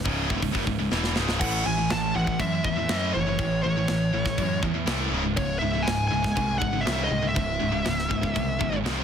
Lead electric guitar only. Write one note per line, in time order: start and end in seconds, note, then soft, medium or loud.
1.40 1.66 F#5 medium
1.67 1.91 G#5 loud
1.91 2.14 A5 loud
2.16 2.41 F#5 medium
2.40 2.64 E5 medium
2.65 2.99 E5 loud
2.99 3.11 D#5 loud
3.14 3.60 C#5 medium
3.63 4.58 C#5 medium
5.37 5.58 C#5 medium
5.59 5.86 E5 loud
5.83 6.06 G#5 loud
6.08 6.55 G#5 loud
6.58 6.82 F#5 medium
6.81 7.04 E5 loud
7.04 7.28 D#5 loud
7.29 8.77 E5 medium